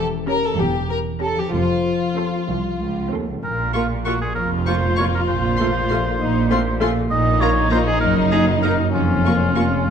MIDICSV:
0, 0, Header, 1, 8, 480
1, 0, Start_track
1, 0, Key_signature, -5, "minor"
1, 0, Tempo, 628931
1, 1172, Time_signature, 6, 3, 24, 8
1, 3093, Tempo, 612870
1, 7673, End_track
2, 0, Start_track
2, 0, Title_t, "Violin section"
2, 0, Program_c, 0, 48
2, 219, Note_on_c, 0, 82, 53
2, 392, Note_off_c, 0, 82, 0
2, 929, Note_on_c, 0, 82, 44
2, 1109, Note_off_c, 0, 82, 0
2, 1654, Note_on_c, 0, 84, 46
2, 1834, Note_off_c, 0, 84, 0
2, 2376, Note_on_c, 0, 84, 40
2, 2557, Note_off_c, 0, 84, 0
2, 2858, Note_on_c, 0, 85, 40
2, 2919, Note_off_c, 0, 85, 0
2, 3093, Note_on_c, 0, 85, 40
2, 3156, Note_off_c, 0, 85, 0
2, 3572, Note_on_c, 0, 85, 40
2, 3635, Note_off_c, 0, 85, 0
2, 3809, Note_on_c, 0, 85, 40
2, 3871, Note_off_c, 0, 85, 0
2, 4282, Note_on_c, 0, 84, 46
2, 4344, Note_off_c, 0, 84, 0
2, 4529, Note_on_c, 0, 84, 45
2, 4592, Note_off_c, 0, 84, 0
2, 5016, Note_on_c, 0, 84, 47
2, 5078, Note_off_c, 0, 84, 0
2, 5256, Note_on_c, 0, 84, 49
2, 5318, Note_off_c, 0, 84, 0
2, 5726, Note_on_c, 0, 82, 51
2, 5789, Note_off_c, 0, 82, 0
2, 5959, Note_on_c, 0, 82, 52
2, 6021, Note_off_c, 0, 82, 0
2, 6434, Note_on_c, 0, 82, 49
2, 6497, Note_off_c, 0, 82, 0
2, 6676, Note_on_c, 0, 82, 46
2, 6739, Note_off_c, 0, 82, 0
2, 7165, Note_on_c, 0, 85, 42
2, 7228, Note_off_c, 0, 85, 0
2, 7401, Note_on_c, 0, 85, 41
2, 7464, Note_off_c, 0, 85, 0
2, 7673, End_track
3, 0, Start_track
3, 0, Title_t, "Oboe"
3, 0, Program_c, 1, 68
3, 2622, Note_on_c, 1, 70, 57
3, 2841, Note_off_c, 1, 70, 0
3, 2851, Note_on_c, 1, 65, 54
3, 2958, Note_off_c, 1, 65, 0
3, 3090, Note_on_c, 1, 66, 55
3, 3209, Note_off_c, 1, 66, 0
3, 3218, Note_on_c, 1, 68, 54
3, 3323, Note_off_c, 1, 68, 0
3, 3327, Note_on_c, 1, 70, 60
3, 3438, Note_off_c, 1, 70, 0
3, 3572, Note_on_c, 1, 72, 65
3, 3810, Note_off_c, 1, 72, 0
3, 3820, Note_on_c, 1, 73, 67
3, 3873, Note_off_c, 1, 73, 0
3, 3948, Note_on_c, 1, 70, 54
3, 4000, Note_off_c, 1, 70, 0
3, 4054, Note_on_c, 1, 72, 69
3, 5226, Note_off_c, 1, 72, 0
3, 5485, Note_on_c, 1, 75, 89
3, 5719, Note_on_c, 1, 73, 74
3, 5731, Note_off_c, 1, 75, 0
3, 5959, Note_off_c, 1, 73, 0
3, 5963, Note_on_c, 1, 72, 75
3, 6016, Note_off_c, 1, 72, 0
3, 6085, Note_on_c, 1, 68, 73
3, 6184, Note_off_c, 1, 68, 0
3, 6189, Note_on_c, 1, 70, 71
3, 6299, Note_off_c, 1, 70, 0
3, 6434, Note_on_c, 1, 68, 69
3, 6543, Note_off_c, 1, 68, 0
3, 6672, Note_on_c, 1, 70, 59
3, 6783, Note_off_c, 1, 70, 0
3, 6920, Note_on_c, 1, 65, 59
3, 7673, Note_off_c, 1, 65, 0
3, 7673, End_track
4, 0, Start_track
4, 0, Title_t, "Violin section"
4, 0, Program_c, 2, 48
4, 224, Note_on_c, 2, 70, 68
4, 334, Note_off_c, 2, 70, 0
4, 344, Note_on_c, 2, 69, 60
4, 455, Note_off_c, 2, 69, 0
4, 457, Note_on_c, 2, 67, 57
4, 686, Note_on_c, 2, 70, 61
4, 692, Note_off_c, 2, 67, 0
4, 747, Note_off_c, 2, 70, 0
4, 930, Note_on_c, 2, 69, 59
4, 1048, Note_off_c, 2, 69, 0
4, 1057, Note_on_c, 2, 67, 58
4, 1170, Note_on_c, 2, 65, 65
4, 1175, Note_off_c, 2, 67, 0
4, 2355, Note_off_c, 2, 65, 0
4, 3337, Note_on_c, 2, 65, 54
4, 4747, Note_off_c, 2, 65, 0
4, 4781, Note_on_c, 2, 63, 55
4, 5009, Note_on_c, 2, 60, 53
4, 5013, Note_off_c, 2, 63, 0
4, 5072, Note_off_c, 2, 60, 0
4, 5249, Note_on_c, 2, 61, 57
4, 5312, Note_off_c, 2, 61, 0
4, 5493, Note_on_c, 2, 63, 75
4, 6896, Note_off_c, 2, 63, 0
4, 6923, Note_on_c, 2, 61, 54
4, 7673, Note_off_c, 2, 61, 0
4, 7673, End_track
5, 0, Start_track
5, 0, Title_t, "Harp"
5, 0, Program_c, 3, 46
5, 0, Note_on_c, 3, 52, 52
5, 0, Note_on_c, 3, 61, 44
5, 0, Note_on_c, 3, 67, 44
5, 0, Note_on_c, 3, 70, 44
5, 1034, Note_on_c, 3, 53, 43
5, 1067, Note_on_c, 3, 60, 34
5, 1103, Note_on_c, 3, 69, 37
5, 1122, Note_off_c, 3, 52, 0
5, 1135, Note_on_c, 3, 72, 36
5, 1139, Note_off_c, 3, 61, 0
5, 1156, Note_off_c, 3, 67, 0
5, 1173, Note_off_c, 3, 70, 0
5, 2586, Note_off_c, 3, 60, 0
5, 2605, Note_off_c, 3, 69, 0
5, 2616, Note_on_c, 3, 46, 47
5, 2621, Note_off_c, 3, 72, 0
5, 2854, Note_on_c, 3, 58, 33
5, 3093, Note_on_c, 3, 65, 36
5, 3336, Note_on_c, 3, 73, 38
5, 3569, Note_off_c, 3, 65, 0
5, 3578, Note_on_c, 3, 65, 36
5, 3807, Note_off_c, 3, 58, 0
5, 3816, Note_on_c, 3, 58, 39
5, 4035, Note_off_c, 3, 53, 0
5, 4045, Note_off_c, 3, 46, 0
5, 4055, Note_on_c, 3, 46, 51
5, 4077, Note_off_c, 3, 58, 0
5, 4078, Note_off_c, 3, 73, 0
5, 4301, Note_on_c, 3, 57, 40
5, 4527, Note_off_c, 3, 65, 0
5, 4536, Note_on_c, 3, 65, 46
5, 4777, Note_on_c, 3, 75, 43
5, 5004, Note_off_c, 3, 65, 0
5, 5013, Note_on_c, 3, 65, 46
5, 5240, Note_off_c, 3, 57, 0
5, 5250, Note_on_c, 3, 57, 47
5, 5477, Note_off_c, 3, 46, 0
5, 5486, Note_on_c, 3, 46, 64
5, 5505, Note_off_c, 3, 57, 0
5, 5506, Note_off_c, 3, 75, 0
5, 5728, Note_on_c, 3, 58, 47
5, 5961, Note_off_c, 3, 65, 0
5, 5969, Note_on_c, 3, 65, 43
5, 5974, Note_on_c, 3, 73, 47
5, 6206, Note_on_c, 3, 42, 56
5, 6219, Note_off_c, 3, 46, 0
5, 6224, Note_off_c, 3, 65, 0
5, 6224, Note_off_c, 3, 73, 0
5, 6433, Note_off_c, 3, 58, 0
5, 6443, Note_on_c, 3, 58, 43
5, 6686, Note_on_c, 3, 63, 38
5, 6691, Note_on_c, 3, 75, 45
5, 6924, Note_on_c, 3, 41, 52
5, 6945, Note_off_c, 3, 42, 0
5, 6946, Note_off_c, 3, 63, 0
5, 6947, Note_off_c, 3, 75, 0
5, 7163, Note_off_c, 3, 58, 0
5, 7172, Note_on_c, 3, 58, 36
5, 7407, Note_on_c, 3, 65, 34
5, 7415, Note_on_c, 3, 73, 37
5, 7642, Note_off_c, 3, 41, 0
5, 7673, Note_off_c, 3, 58, 0
5, 7673, Note_off_c, 3, 65, 0
5, 7673, Note_off_c, 3, 73, 0
5, 7673, End_track
6, 0, Start_track
6, 0, Title_t, "Viola section"
6, 0, Program_c, 4, 48
6, 211, Note_on_c, 4, 61, 51
6, 212, Note_on_c, 4, 67, 52
6, 387, Note_off_c, 4, 61, 0
6, 388, Note_off_c, 4, 67, 0
6, 923, Note_on_c, 4, 67, 48
6, 924, Note_on_c, 4, 61, 45
6, 1106, Note_off_c, 4, 61, 0
6, 1106, Note_off_c, 4, 67, 0
6, 1655, Note_on_c, 4, 69, 47
6, 1658, Note_on_c, 4, 60, 43
6, 1834, Note_off_c, 4, 69, 0
6, 1836, Note_off_c, 4, 60, 0
6, 2387, Note_on_c, 4, 69, 42
6, 2389, Note_on_c, 4, 60, 41
6, 2562, Note_off_c, 4, 69, 0
6, 2564, Note_off_c, 4, 60, 0
6, 2856, Note_on_c, 4, 58, 44
6, 2856, Note_on_c, 4, 65, 42
6, 2917, Note_off_c, 4, 58, 0
6, 2917, Note_off_c, 4, 65, 0
6, 3096, Note_on_c, 4, 65, 39
6, 3097, Note_on_c, 4, 58, 41
6, 3159, Note_off_c, 4, 65, 0
6, 3160, Note_off_c, 4, 58, 0
6, 3581, Note_on_c, 4, 65, 42
6, 3583, Note_on_c, 4, 58, 40
6, 3643, Note_off_c, 4, 65, 0
6, 3646, Note_off_c, 4, 58, 0
6, 3823, Note_on_c, 4, 65, 43
6, 3826, Note_on_c, 4, 58, 40
6, 3885, Note_off_c, 4, 65, 0
6, 3888, Note_off_c, 4, 58, 0
6, 4305, Note_on_c, 4, 57, 47
6, 4307, Note_on_c, 4, 65, 48
6, 4367, Note_off_c, 4, 57, 0
6, 4370, Note_off_c, 4, 65, 0
6, 4541, Note_on_c, 4, 57, 47
6, 4545, Note_on_c, 4, 65, 48
6, 4604, Note_off_c, 4, 57, 0
6, 4608, Note_off_c, 4, 65, 0
6, 5018, Note_on_c, 4, 57, 49
6, 5020, Note_on_c, 4, 65, 52
6, 5081, Note_off_c, 4, 57, 0
6, 5082, Note_off_c, 4, 65, 0
6, 5252, Note_on_c, 4, 65, 51
6, 5253, Note_on_c, 4, 57, 50
6, 5315, Note_off_c, 4, 65, 0
6, 5316, Note_off_c, 4, 57, 0
6, 5723, Note_on_c, 4, 65, 54
6, 5725, Note_on_c, 4, 58, 57
6, 5786, Note_off_c, 4, 65, 0
6, 5788, Note_off_c, 4, 58, 0
6, 5960, Note_on_c, 4, 65, 53
6, 5963, Note_on_c, 4, 58, 53
6, 6022, Note_off_c, 4, 65, 0
6, 6025, Note_off_c, 4, 58, 0
6, 6436, Note_on_c, 4, 63, 51
6, 6439, Note_on_c, 4, 58, 46
6, 6499, Note_off_c, 4, 63, 0
6, 6501, Note_off_c, 4, 58, 0
6, 6684, Note_on_c, 4, 63, 48
6, 6685, Note_on_c, 4, 58, 44
6, 6746, Note_off_c, 4, 63, 0
6, 6747, Note_off_c, 4, 58, 0
6, 7164, Note_on_c, 4, 65, 43
6, 7165, Note_on_c, 4, 58, 44
6, 7226, Note_off_c, 4, 65, 0
6, 7228, Note_off_c, 4, 58, 0
6, 7406, Note_on_c, 4, 58, 40
6, 7407, Note_on_c, 4, 65, 40
6, 7469, Note_off_c, 4, 58, 0
6, 7469, Note_off_c, 4, 65, 0
6, 7673, End_track
7, 0, Start_track
7, 0, Title_t, "Cello section"
7, 0, Program_c, 5, 48
7, 0, Note_on_c, 5, 40, 64
7, 309, Note_off_c, 5, 40, 0
7, 442, Note_on_c, 5, 40, 58
7, 1028, Note_off_c, 5, 40, 0
7, 1169, Note_on_c, 5, 41, 51
7, 1756, Note_off_c, 5, 41, 0
7, 1895, Note_on_c, 5, 36, 45
7, 1956, Note_off_c, 5, 36, 0
7, 2131, Note_on_c, 5, 37, 47
7, 2372, Note_off_c, 5, 37, 0
7, 2379, Note_on_c, 5, 39, 42
7, 2500, Note_off_c, 5, 39, 0
7, 2508, Note_on_c, 5, 37, 41
7, 2554, Note_off_c, 5, 37, 0
7, 2622, Note_on_c, 5, 46, 49
7, 3214, Note_off_c, 5, 46, 0
7, 3336, Note_on_c, 5, 41, 50
7, 3938, Note_off_c, 5, 41, 0
7, 4060, Note_on_c, 5, 46, 49
7, 4658, Note_off_c, 5, 46, 0
7, 4782, Note_on_c, 5, 46, 59
7, 5372, Note_off_c, 5, 46, 0
7, 5489, Note_on_c, 5, 46, 62
7, 6082, Note_off_c, 5, 46, 0
7, 6201, Note_on_c, 5, 42, 65
7, 6802, Note_off_c, 5, 42, 0
7, 6925, Note_on_c, 5, 41, 52
7, 7531, Note_off_c, 5, 41, 0
7, 7673, End_track
8, 0, Start_track
8, 0, Title_t, "Double bass section"
8, 0, Program_c, 6, 48
8, 0, Note_on_c, 6, 28, 62
8, 311, Note_off_c, 6, 28, 0
8, 452, Note_on_c, 6, 28, 66
8, 1033, Note_off_c, 6, 28, 0
8, 1170, Note_on_c, 6, 29, 49
8, 1757, Note_off_c, 6, 29, 0
8, 1896, Note_on_c, 6, 36, 53
8, 2481, Note_off_c, 6, 36, 0
8, 2620, Note_on_c, 6, 34, 45
8, 3213, Note_off_c, 6, 34, 0
8, 3336, Note_on_c, 6, 29, 56
8, 3939, Note_off_c, 6, 29, 0
8, 4052, Note_on_c, 6, 34, 56
8, 4654, Note_off_c, 6, 34, 0
8, 4777, Note_on_c, 6, 34, 63
8, 5369, Note_off_c, 6, 34, 0
8, 5489, Note_on_c, 6, 34, 63
8, 6082, Note_off_c, 6, 34, 0
8, 6199, Note_on_c, 6, 30, 68
8, 6800, Note_off_c, 6, 30, 0
8, 6923, Note_on_c, 6, 29, 53
8, 7530, Note_off_c, 6, 29, 0
8, 7649, Note_on_c, 6, 29, 52
8, 7673, Note_off_c, 6, 29, 0
8, 7673, End_track
0, 0, End_of_file